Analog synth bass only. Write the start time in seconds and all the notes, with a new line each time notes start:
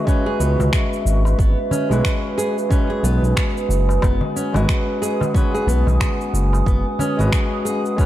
0.40 C#2
0.59 C#2
1.05 G#1
1.39 G#1
1.90 B1
3.03 B1
3.22 B1
3.69 F#1
4.03 F#1
4.54 G#1
5.67 B1
5.87 B1
6.33 F#1
6.66 F#1
7.19 G#1